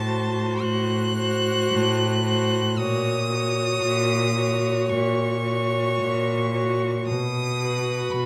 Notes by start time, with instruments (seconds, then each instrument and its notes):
Already playing: cello A2, violin A5
0.06 viola F#4, violin C5
0.62 cello A2, violin F#6
1.18 viola F#4, violin C5
1.70 cello A2
2.24 viola F#4, violin C5
2.77 cello A#2, viola F#4, violin C#5 D#6
3.30 viola F#4, violin C#5
3.83 cello A#2
4.36 viola F#4, violin C#5
4.89 cello A#2, violin C#6
5.44 viola F#4, violin C#5
5.99 cello A#2
6.54 viola F#4, violin C#5
7.07 cello B2, violin D#6
7.61 viola F#4, violin B4
8.11 cello B2, violin B5